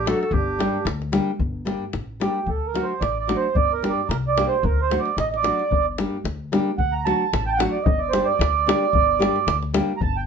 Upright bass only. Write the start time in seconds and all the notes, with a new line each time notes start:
Already playing: A1
0.31 G1
0.85 D2
1.39 G1
1.94 A1
2.46 D2
3.01 A1
3.55 G1
4.09 C2
4.63 D2
5.17 A1
5.71 G1
6.24 D2
6.78 D2
7.33 A1
7.86 G1
8.39 D2
8.93 G1
9.47 D2
10.01 G1